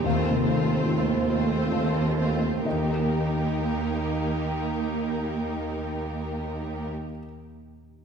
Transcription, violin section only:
\new Staff \with { instrumentName = "Violin section" } { \time 3/4 \key ees \major \tempo 4 = 66 <f' c''>8 <f' c''>4 <f' c''>4 <f' c''>8 | <g' bes'>2.~ | <g' bes'>2. | }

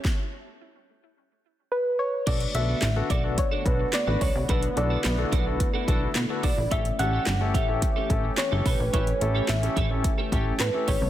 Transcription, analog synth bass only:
\new Staff \with { instrumentName = "Analog synth bass" } { \clef bass \time 4/4 \key b \minor \tempo 4 = 108 r1 | b,,8 b,,8 a,,8 b,,8. r16 b,,8 r16 a,,16 cis,16 c,16 | b,,8 b,,8 b,,8 b,,8. r16 b,,8 b,16 r16 b,,16 ais,,16 | a,,8 a,,8 g,,8 a,,8. r16 a,,8 r16 g,,16 b,,16 ais,,16 |
a,,8 a,,8 a,,8 a,,8. r16 a,,8 a,16 r16 a,,16 c,16 | }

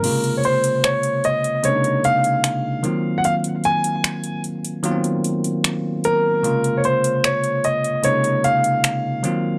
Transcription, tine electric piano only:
\new Staff \with { instrumentName = "Tine electric piano" } { \time 4/4 \key bes \minor \tempo 4 = 75 <c des aes bes f'>4.~ <c des aes bes f'>16 r16 <c des aes bes d' ees'>4. <ees ges bes c' f'>8~ | <ees ges bes c' f'>4~ <ees ges bes c' f'>16 r8. <ees ges bes ces' c' f'>4.~ <ees ges bes ces' c' f'>16 r16 | <c des aes bes f'>4.~ <c des aes bes f'>16 r16 <c des aes bes ees'>4. <ees ges bes c' f'>8 | }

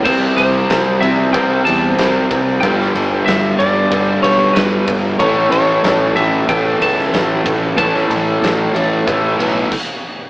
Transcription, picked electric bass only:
\new Staff \with { instrumentName = "Picked electric bass" } { \clef bass \time 4/4 \key g \lydian \tempo 4 = 93 c,8 c,8 c,8 c,8 c,8 e,8 c,8 c,8 | g,,8 g,,8 g,,8 g,,8 g,,8 b,,8 g,,8 g,,8 | a,,8 a,,8 a,,8 a,,8 a,,8 cis,8 a,,8 a,,8 | a,,8 a,,8 a,,8 a,,8 a,,8 b,,8 r4 | }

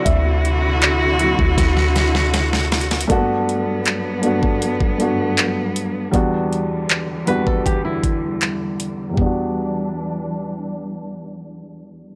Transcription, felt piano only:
<<
  \new Staff \with { instrumentName = "Felt piano" } { \time 4/4 \key e \minor \tempo 4 = 79 <fis c' e'>4. <fis c' e'>8 r2 | r1 | r1 | r1 | }
  \new Staff \with { instrumentName = "Felt piano" } { \time 4/4 \key e \minor e''2.~ e''8 r8 | <g, a ais b d' fis'>4 r8 <g, a b d' fis'>8 r8 <g, a b d' fis'>4 r8 | <e, g b d' fis'>4 r8 <e, g b d' fis'>4 r4. | <e, g b d' fis'>1 | }
>>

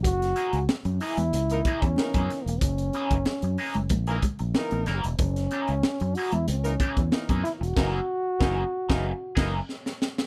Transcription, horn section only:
\new Staff \with { instrumentName = "Horn section" } { \time 4/4 \key fis \mixolydian \tempo 4 = 93 r2 r16 <e ais dis' ais'>16 r8 <e ais dis' ais'>8. r16 | r2 r16 <e ais dis' ais'>16 r8 <e ais dis' ais'>8. r16 | r2 r16 <e ais dis' ais'>16 r8 <e ais dis' ais'>8. r16 | <e ais dis' ais'>8 r8 <e ais dis' ais'>8 r16 <e ais dis' ais'>8 r16 <e ais dis' ais'>8 r4 | }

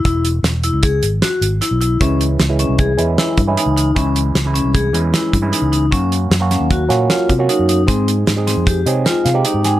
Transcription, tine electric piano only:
\new Staff \with { instrumentName = "Tine electric piano" } { \time 5/4 \key des \lydian \tempo 4 = 153 << { r1 r4 | r1 r4 | r1 r4 | r1 r4 |
r2 r8 des''8 ees''8 f''8 g''8 aes''8 | } \\ { r1 r4 | <fes aes des' fes'>4 r16 <fes aes des' fes'>4 r16 <fes aes des' fes'>4 r16 <fes aes des' fes'>4 r16 | <fes aes des' fes'>4 r16 <fes aes des' fes'>4 r16 <fes aes des' fes'>4 r16 <fes aes des' fes'>4 r16 | <ges bes des' ges'>4 r16 <ges bes des' ges'>4 r16 <ges bes des' ges'>4 r16 <ges bes des' ges'>4 r16 |
<aes c' ees' aes'>4 r16 <aes c' ees' aes'>4 r16 <aes c' ees' aes'>4 r16 <aes c' ees' g'>4 r16 | } >> }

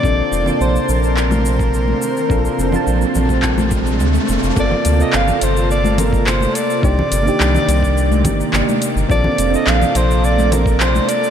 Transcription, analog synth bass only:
\new Staff \with { instrumentName = "Analog synth bass" } { \clef bass \time 4/4 \key bes \major \tempo 4 = 106 bes,,16 r16 f,,16 r16 bes,,16 r16 bes,,4.~ bes,,16 r8. | bes,,16 r16 f,,16 r16 bes,,16 r16 bes,,4. d,16 r16 f,,16 f,,16 | g,,16 r16 d,16 r16 g,,16 r16 g,,4.~ g,,16 r8. | c,16 r16 g,,16 r16 c,16 r16 c,4 g,,16 r16 g,,16 r8 g,,16 |
bes,,16 r16 f,,16 r16 bes,,16 r16 bes,,4.~ bes,,16 r8. | }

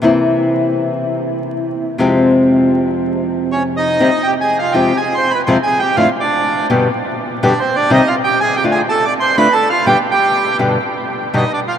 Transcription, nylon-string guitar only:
\new Staff \with { instrumentName = "Nylon-string guitar" } { \clef bass \time 4/4 \key f \minor \tempo 4 = 122 <c e bes c' e'>1 | <f, c f aes c' g'>1 | \key c \minor <c ees g c' g'>8 r4 <f, c f aes c' f'>8 r4 <f, c f aes c' f'>8 r8 | <f, a, d a d' f'>8 r4 <g, b, d g b g'>8 r4 <g, b, d g b g'>8 r8 |
<c ees g c' g'>8 r4 <d a d' f'>8 r4 <d a d' f'>8 r8 | <g, b, d g b g'>8 r4 <g, b, d g b g'>8 r4 <g, b, d g b g'>8 r8 | }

